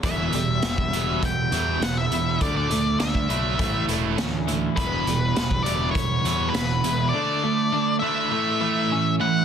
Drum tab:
HH |x-x-x-x-x-x-x-x-|x-x-x-x-x-x-x-x-|x-x-x-x-x-x-x-x-|----------------|
SD |----o-------o---|----o-------o---|----o-------o---|----------------|
BD |o----o--o-------|o----o--o-------|o----o--o-------|----------------|